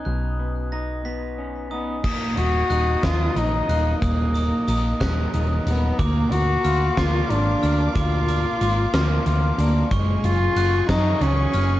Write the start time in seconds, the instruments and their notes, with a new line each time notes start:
Already playing: clean electric guitar F#3 B3 C#4 D#4
0.05 picked electric bass B1, clean electric guitar B2, glockenspiel F#6
0.39 clean electric guitar B3
0.72 clean electric guitar D#4, glockenspiel A#6
1.05 clean electric guitar B3, glockenspiel B6
1.38 clean electric guitar C#4
1.71 cello B3, clean electric guitar D#4, glockenspiel D#6
2.03 picked electric bass D#1, clean electric guitar D#2, cello A#3, string section A#4 D#5 D#6, glockenspiel D#6, kick, crash
2.37 picked electric bass D#1, cello F#4, closed hi-hat
2.70 picked electric bass D#1, clean electric guitar D#4, glockenspiel F#6, closed hi-hat
3.03 picked electric bass D#2, clean electric guitar F#3, cello F4, glockenspiel D#6, kick, snare, closed hi-hat
3.36 picked electric bass A#1, clean electric guitar D#4, cello D#4, closed hi-hat
3.69 picked electric bass D#1, clean electric guitar A#3, glockenspiel F#6, closed hi-hat
4.02 picked electric bass D#1, clean electric guitar D#2, cello A#3, glockenspiel D#6, kick, closed hi-hat
4.34 glockenspiel D#6, closed hi-hat
4.68 picked electric bass A#1, clean electric guitar D#4, glockenspiel D#6, closed hi-hat
5.00 picked electric bass D#1, clean electric guitar F#3, glockenspiel F#6, kick, snare, closed hi-hat
5.34 picked electric bass D#1, clean electric guitar D#4, closed hi-hat
5.66 picked electric bass D#1, cello B3, closed hi-hat
5.98 picked electric bass D2, clean electric guitar A#2, cello A#3, string section F5 D6, glockenspiel D6, kick, closed hi-hat
6.32 picked electric bass D2, cello F#4, closed hi-hat
6.64 picked electric bass D2, clean electric guitar F4, glockenspiel F6, closed hi-hat
6.97 picked electric bass D2, clean electric guitar A#3, cello F4, glockenspiel D6, kick, snare, closed hi-hat
7.30 picked electric bass G#1, cello D4, clean electric guitar F4, closed hi-hat
7.63 picked electric bass D2, clean electric guitar D4, glockenspiel F6, closed hi-hat
7.95 picked electric bass D2, clean electric guitar A#2, cello F4, glockenspiel D6, kick, closed hi-hat
8.28 glockenspiel D6, closed hi-hat
8.61 picked electric bass G#1, clean electric guitar F4, glockenspiel D6, closed hi-hat
8.93 picked electric bass D2, clean electric guitar A#3, glockenspiel F6, snare, closed hi-hat
9.26 picked electric bass D2, clean electric guitar F4, closed hi-hat
9.58 picked electric bass D2, cello A#3, clean electric guitar D4, closed hi-hat
9.91 picked electric bass F#1, clean electric guitar F#2, cello G#3, string section G#4 G#5 C#6, glockenspiel C#6, kick, closed hi-hat
10.24 picked electric bass F#1, cello F4, closed hi-hat
10.56 picked electric bass F#1, clean electric guitar F#4, glockenspiel F#6, closed hi-hat
10.89 picked electric bass F#2, clean electric guitar F#3, cello D#4, glockenspiel D#6, kick, snare, closed hi-hat
11.21 picked electric bass C#2, cello C#4, clean electric guitar F#4, closed hi-hat
11.54 picked electric bass F#1, clean electric guitar C#4, glockenspiel F6, closed hi-hat